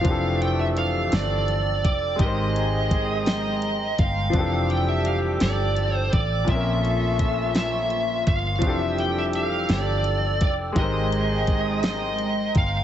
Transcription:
Already playing: F5
0.01 C3 E3 F3 A3 C4 D4 A4 G5 D6 E6, kick, closed hi-hat
0.05 F1 E3 G4
0.11 A4
0.42 G5, closed hi-hat
0.60 E5
0.77 F5, closed hi-hat
1.12 G1 D5, snare, closed hi-hat
1.48 closed hi-hat
1.85 F1 D5, kick, closed hi-hat
2.16 G#1 D#3 G#3 C4 D#4 G#4 A#5 C6, kick
2.20 G4 A#4 D#5, closed hi-hat
2.26 C5
2.56 closed hi-hat
2.91 kick, closed hi-hat
3.26 D#5, snare, closed hi-hat
3.62 closed hi-hat
3.98 G1 F5, kick, closed hi-hat
4.30 F1 E3 F3 G3 C4 D4 G4 A4 D6 E6, kick, closed hi-hat
4.34 E3 D4 G4
4.40 A4
4.70 G5, closed hi-hat
4.89 E5
5.05 F5, closed hi-hat
5.40 G1 D5, snare, closed hi-hat
5.77 closed hi-hat
5.96 C5
6.13 A1 D5, kick, closed hi-hat
6.44 A#1 A#2 F3 A3 A#3 C#4 F4 A4 C6 C#6, kick, closed hi-hat
6.49 C4 C#4 E5
6.54 A#4
6.85 closed hi-hat
7.19 kick, closed hi-hat
7.55 E5, snare, closed hi-hat
7.90 closed hi-hat
8.27 G1 F5, kick, closed hi-hat
8.59 F1 E3 F3 G3 C4 D4 G4 G5 D6 E6, kick, closed hi-hat
8.63 E3 D4 G4 A4
8.69 A4
8.79 E5
8.98 G5, closed hi-hat
9.19 E5
9.33 F5, closed hi-hat
9.69 G1 D5, snare, closed hi-hat
10.04 closed hi-hat
10.41 F1 D5, kick, closed hi-hat
10.73 G#1 D#3 G#3 C4 D#4 G#4 A#5 C6, kick, closed hi-hat
10.78 G4 A#4 D#5
10.83 C5
11.12 closed hi-hat
11.47 kick, closed hi-hat
11.83 D#5, snare, closed hi-hat
12.18 closed hi-hat
12.55 G1 F5, kick, closed hi-hat

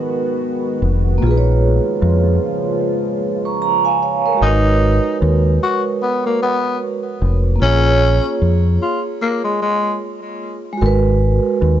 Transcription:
Already playing: D#3 G#3 B3 F#4 A#4 B4
0.82 F1
1.18 C#3 F3 G#3 A#3 F4
1.22 A#1 F4
1.27 G#4
1.31 B4
1.38 C#5
2.02 F2
3.45 A#5 C#6
3.62 A#5
3.85 F5 G#5
4.02 C#5 F5
4.26 A#4 C#5
4.33 G#3
4.37 F#4
4.42 G#1 D#4 A#4
4.46 B4
5.22 D#2
5.63 F#4
6.02 B3
6.26 A#3
6.42 B3
7.22 F1
7.55 A#3
7.60 A#1 C#4 F4
7.64 G#4
7.68 C#5
8.42 F2
8.82 F4
9.22 A#3
9.44 G#3
9.62 G#3
10.73 G#3
10.77 F#4 A#4
10.82 G#1 B4
11.62 D#2

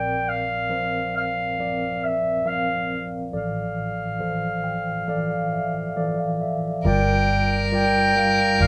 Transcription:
Already playing: A#1 A#2 F3 C4 A#4 D5 G5
0.29 F5
0.70 F3 C4 A#4 C5
1.17 F5
1.59 F3 C4 A#4 D5
2.04 E5
2.45 F3 C4 A#4 F5
3.33 A1 A2 E3 F3 A4 D5 F5
4.19 E3 F3 A4 C5
4.64 G5
5.07 E3 F3 A4 D5 F5
5.31 F5
5.53 E5
5.96 E3 F3 A4 D5
6.18 F5
6.41 E5
6.84 G1 G2 G3 F4 A#4 D5 G5
7.72 G3 F4 A#4 D5 G5
8.16 G3 F4 A#4 F5
8.59 G1 G3 F4 A#4 D5 F5

